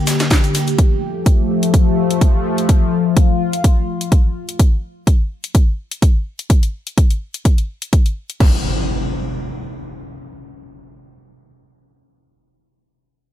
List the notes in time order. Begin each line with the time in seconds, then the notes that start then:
Already playing: D3 A#3 G4
0.07 snare, open hi-hat, ride, shaker
0.19 snare, closed hi-hat, ride, shaker
0.31 kick, snare, closed hi-hat, ride, shaker
0.44 closed hi-hat, shaker
0.55 snare, open hi-hat, ride, shaker
0.67 closed hi-hat, shaker
0.78 F3 A3, kick, closed hi-hat
1.26 kick, closed hi-hat
1.63 closed hi-hat
1.74 kick, closed hi-hat
2.11 closed hi-hat
2.21 kick, closed hi-hat
2.58 closed hi-hat
2.69 F4, kick, closed hi-hat
3.17 kick, closed hi-hat
3.53 closed hi-hat
3.64 kick, closed hi-hat
4.01 closed hi-hat
4.12 kick, closed hi-hat
4.49 closed hi-hat
4.59 kick, closed hi-hat
5.07 kick, closed hi-hat
5.44 closed hi-hat
5.55 kick, closed hi-hat
5.91 closed hi-hat
6.02 kick, closed hi-hat
6.39 closed hi-hat
6.50 kick, closed hi-hat
6.63 closed hi-hat
6.87 closed hi-hat
6.98 kick, closed hi-hat
7.10 closed hi-hat
7.34 closed hi-hat
7.45 kick, closed hi-hat
7.58 closed hi-hat
7.82 closed hi-hat
7.93 kick, closed hi-hat
8.06 closed hi-hat
8.30 closed hi-hat
8.40 kick, crash, impact